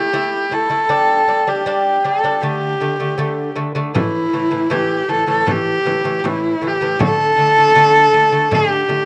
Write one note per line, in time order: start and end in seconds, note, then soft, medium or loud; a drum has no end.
0.00 0.55 G4 medium
0.13 0.44 A3 medium
0.13 0.44 E4 medium
0.51 0.67 A3 medium
0.51 0.67 E4 medium
0.51 1.50 A4 medium
0.70 0.86 A3 medium
0.70 0.86 E4 medium
0.89 1.20 G3 medium
0.89 1.20 D4 medium
1.27 1.43 G3 medium
1.27 1.44 D4 medium
1.47 1.62 G3 medium
1.47 1.63 D4 medium
1.47 2.06 G4 medium
1.66 1.97 G3 medium
1.66 1.97 D4 medium
2.04 2.20 G3 medium
2.04 2.20 D4 medium
2.04 2.43 A4 medium
2.24 2.39 G3 medium
2.24 2.39 D4 medium
2.42 2.73 D3 medium
2.42 2.74 A3 medium
2.42 3.57 G4 medium
2.81 2.96 D3 medium
2.81 2.96 A3 medium
3.00 3.15 D3 medium
3.00 3.15 A3 medium
3.18 3.49 D3 medium
3.18 3.49 A3 medium
3.56 3.72 D3 medium
3.56 3.72 A3 medium
3.75 3.91 D3 medium
3.75 3.91 A3 medium
3.95 4.25 A2 medium
3.95 4.26 E3 loud
3.95 4.73 E4 loud
3.95 frame drum medium
4.33 4.48 A2 medium
4.33 4.49 E3 medium
4.51 4.67 A2 medium
4.51 4.67 E3 medium
4.51 frame drum soft
4.70 5.01 A2 medium
4.70 5.02 E3 loud
4.70 5.10 G4 medium
4.70 frame drum soft
5.08 5.24 A2 medium
5.08 5.24 E3 medium
5.08 5.28 A4 medium
5.08 frame drum soft
5.27 5.43 A2 medium
5.27 5.43 E3 medium
5.27 5.53 A4 medium
5.46 5.77 A2 medium
5.46 5.78 E3 medium
5.46 frame drum medium
5.52 6.19 G4 loud
5.85 6.01 A2 medium
5.85 6.01 E3 medium
5.85 frame drum soft
6.04 6.20 A2 medium
6.04 6.20 E3 medium
6.04 frame drum soft
6.19 6.29 G4 medium
6.24 6.54 A2 medium
6.24 6.55 E3 medium
6.24 6.69 E4 medium
6.24 frame drum medium
6.61 6.77 A2 medium
6.61 6.77 E3 medium
6.67 7.02 G4 medium
6.81 6.96 A2 medium
6.81 6.96 E3 medium
6.99 7.30 D3 medium
6.99 7.30 A3 loud
6.99 8.56 A4 loud
6.99 frame drum medium
7.38 7.53 D3 medium
7.38 7.53 A3 medium
7.57 7.72 D3 medium
7.57 7.73 A3 medium
7.57 frame drum soft
7.75 8.06 D3 loud
7.75 8.06 A3 loud
7.75 frame drum soft
8.13 8.28 D3 medium
8.13 8.29 A3 medium
8.13 frame drum soft
8.32 8.47 D3 medium
8.32 8.48 A3 medium
8.51 8.82 D3 medium
8.51 8.82 A3 medium
8.51 9.05 G4 medium
8.51 frame drum medium
8.88 9.04 D3 medium
8.88 9.05 A3 medium
8.88 frame drum soft